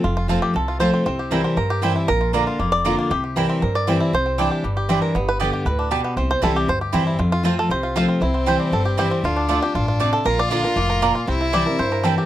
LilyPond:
<<
  \new Staff \with { instrumentName = "Mandolin" } { \time 4/4 \key c \mixolydian \tempo 4 = 235 r4 <c' f' c'' a''>8 r4. <c' f' c'' a''>8 r8 | r4 <c' e' c'' g''>8 r4. <c' e' c'' g''>8 r8 | r4 <bes f' d'' bes''>8 r4. <bes f' d'' bes''>8 r8 | r4 <c' e' c'' g''>8 r4. <c' e' c'' g''>8 r8 |
r4 <c' e' d'' g''>8 r4. <c' e' d'' g''>8 r8 | r4 <b g' d'' a''>8 r4. <b g' d'' a''>8 r8 | r4 <c' e' c'' g''>8 r4. <c' e' c'' g''>8 r8 | r4 <c' f' c'' a''>8 r4. <c' f' c'' a''>8 r8 |
r4 <c' e' c'' g''>8 r4. <c' e' c'' g''>8 r8 | r4 <a f' d'' a''>8 r4. <a f' d'' a''>8 r8 | r4 <bes f' d'' bes''>8 r4. <bes f' d'' bes''>8 r8 | r4 <c' e' c'' g''>8 r4. <c' e' c'' g''>8 r8 | }
  \new Staff \with { instrumentName = "Five-string banjo" } { \time 4/4 \key c \mixolydian << { r8 f'4 g'8 a'4 c''4 | r2 r8 g'4. | bes'4. r4 d''4. | g'4. r4 d''4. |
c''4. r2 r8 | r8 b'4. b'4. r8 | r8 c''8 a'8 g'8 c''4 r4 | r8 f'4 a'8 c''4 f''4 |
r4 c''4 a'4 g'4 | f'4. g'8 f'4. a'8 | bes'8 d''4 r2 r8 | r4 d''4 c''4 a'4 | } \\ { f'4 f'4. f'4 c'8 | c'8 g'8 bes'8 c'8 bes'4 c'8 e'8 | r8 f'8 bes'8 f'8 bes4 f'8 bes8 | r8 g'8 bes'8 c'8 bes'4 c'8 e'8 |
r8 c'8 d'8 g'8 g8 g'8 c'8 bes'8 | b4 g'8 g'4 d'8 g'8 b8 | c'4. r4 g'8 c'8 e'8 | f'4 f'4. f'4 c'8 |
e'8 c'4 g4 g'4 c'8 | r8 d'8 f'4. f'8 d'4 | r4 f'8 bes'8 bes8 bes'8 bes8 f'8 | c'8 e'4 bes'4 bes'4 g'8 | } >> }
  \new Staff \with { instrumentName = "Fiddle" } { \time 4/4 \key c \mixolydian r1 | r1 | r1 | r1 |
r1 | r1 | r1 | r1 |
c'1 | d'1 | f'1 | e'2.~ e'8 r8 | }
  \new Staff \with { instrumentName = "Steel-string acoustic guitar" } { \clef bass \time 4/4 \key c \mixolydian << { r4 <f a c' f'>4 r4 <f a c' f'>4 | r4 <e g c' e'>4 r4 <e g c' e'>4 | r4 <d bes d' f'>4 r4 <d bes d' f'>4 | r4 <e g c' e'>4 r4 <e g c' e'>4 |
r4 <e g d' e'>4 r4 <e g d' e'>4 | r4 <d g b g'>4 r2 | r4 <e g c' e'>4 r4 <e g c' e'>4 | r4 <f a c' f'>4 r4 <f a c' f'>4 |
r4 <e g c' e'>4 r4 <e g c' e'>4 | r4 <d a d' f'>8 <d' f'>8 r2 | r4 <d bes d' f'>8 <d' f'>8 r2 | r4 <e g c' e'>8 <c' e'>8 r4 <e g c' e'>4 | } \\ { f,2 c2 | c2 g,2 | bes,2 f,2 | c2 g,2 |
c2 g,2 | g,2 a,4 b,4 | c2 g,2 | f,2 c2 |
c2 g,2 | d2 g,4 c4 | bes,2 a,4 bes,4 | c2 g,2 | } >> }
  \new Staff \with { instrumentName = "Upright bass" } { \clef bass \time 4/4 \key c \mixolydian f,,2 c,2 | c,2 g,2 | bes,,2 f,,2 | c,2 g,2 |
c,2 g,,2 | g,,2 d,2 | c,4 c,4 d,4 e,4 | f,2 c,2 |
c,2 g,,2 | d,2 a,,2 | bes,,2 f,,2 | c,2 g,2 | }
>>